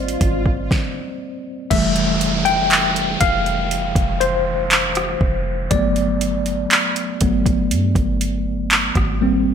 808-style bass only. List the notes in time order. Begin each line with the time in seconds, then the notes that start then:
Already playing: G#1
0.21 G#1
1.71 F1
3.21 F1
3.96 F1
5.21 F1
5.71 G1
7.21 G1
7.71 G2
7.95 G1
8.96 G#1
9.46 G1